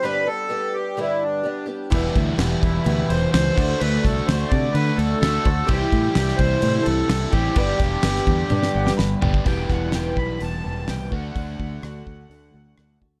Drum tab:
CC |----------------|x-x-x-x-x-x-x-x-|x-x-x-x-x-x-x-x-|x-x-x-x-x-x-x-x-|
HH |----------------|----------------|----------------|----------------|
SD |----------------|----o-------o---|--o-o-------o---|----oo------o---|
T1 |----------------|----------------|----------------|----------------|
FT |----------------|----------------|----------------|----------------|
BD |----------------|o-o---o-------o-|--o---o-------o-|o-o---o-------o-|

CC |x-x-x-x---------|----------------|----------------|
HH |----------------|o---o---o---o---|o---o---o---o---|
SD |--o-oo---o-oo---|--o-o-------o---|----r-------r---|
T1 |--------o-------|----------------|----------------|
FT |--------------o-|----------------|----------------|
BD |o-o---o--------o|o-o---o-------o-|o-o---o-------o-|